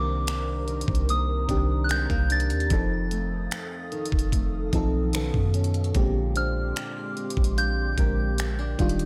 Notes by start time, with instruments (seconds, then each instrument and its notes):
Already playing: 808-style bass C2, nylon-string guitar C3 G3 A#3, fm electric piano D#3 C4 D4 A#4, ambient pad A#4 C5 A#5, synth bell D6
0.27 nylon-string guitar D4, finger snap, closed hi-hat
0.68 nylon-string guitar D#3, closed hi-hat
0.81 closed hi-hat
0.88 808-style bass C2, kick
0.95 closed hi-hat
1.09 nylon-string guitar A#3, synth bell D#6, closed hi-hat
1.48 808-style bass C2, fm electric piano D#3 C4 D4 G4, nylon-string guitar D4, kick, closed hi-hat
1.84 synth bell F#6
1.89 nylon-string guitar G#3, synth bell G6, finger snap, closed hi-hat
2.10 808-style bass C2, nylon-string guitar A#3, kick
2.30 nylon-string guitar D4, synth bell A6, closed hi-hat
2.40 closed hi-hat
2.50 808-style bass D#2, closed hi-hat
2.60 closed hi-hat
2.70 808-style bass F1, nylon-string guitar F2, fm electric piano F3 C4 D#4 A4, ambient pad A4 F5 D#6, kick, closed hi-hat
3.11 nylon-string guitar A3, closed hi-hat
3.51 nylon-string guitar C4, finger snap, closed hi-hat
3.92 nylon-string guitar D#3, closed hi-hat
4.06 closed hi-hat
4.12 808-style bass F1, kick
4.19 closed hi-hat
4.32 nylon-string guitar A3, kick, closed hi-hat
4.73 808-style bass B1, fm electric piano F3 C4 D#4 A4, nylon-string guitar C4, kick, closed hi-hat
5.13 nylon-string guitar B2, fm electric piano D#3 B3 C#4 A4, finger snap, closed hi-hat
5.34 808-style bass F#2, kick
5.54 nylon-string guitar C#4, closed hi-hat
5.64 closed hi-hat
5.74 closed hi-hat
5.84 closed hi-hat
5.94 808-style bass A#1, nylon-string guitar A#2, fm electric piano D3 G#3 C4 G4, ambient pad G#3 G5 C6 D6, kick, closed hi-hat
6.35 nylon-string guitar D4, celesta C5, synth bell F6, closed hi-hat
6.76 nylon-string guitar G4, finger snap, closed hi-hat
7.16 nylon-string guitar G#3, closed hi-hat
7.30 closed hi-hat
7.37 808-style bass A#1, kick
7.44 closed hi-hat
7.57 nylon-string guitar D4, celesta F5, synth bell G6, closed hi-hat
7.97 808-style bass A#1, fm electric piano D3 G#3 C4 A#4, nylon-string guitar G4, kick, closed hi-hat
8.38 nylon-string guitar C4, finger snap, closed hi-hat
8.59 nylon-string guitar D4
8.78 808-style bass D#1, fm electric piano D#3 G3 D4 F4, nylon-string guitar D#3, ambient pad G4 F5, kick, closed hi-hat
8.89 closed hi-hat
8.99 closed hi-hat